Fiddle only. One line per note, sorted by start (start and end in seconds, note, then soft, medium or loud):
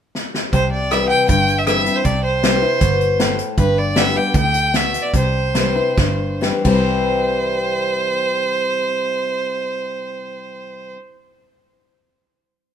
0.52 0.71 C5 medium
0.71 0.93 D5 medium
0.92 1.08 E5 medium
1.09 1.27 G5 loud
1.29 1.60 G5 medium
1.58 1.66 E5 medium
1.67 1.97 E5 medium
1.96 2.06 C5 medium
2.05 2.23 D5 medium
2.24 3.34 C5 medium
3.59 3.80 B4 medium
3.78 3.98 D5 medium
3.97 4.18 E5 medium
4.17 4.35 G5 medium
4.37 4.78 G5 medium
4.76 5.03 E5 medium
5.02 5.15 D5 medium
5.16 6.40 C5 medium
6.66 10.92 C5 medium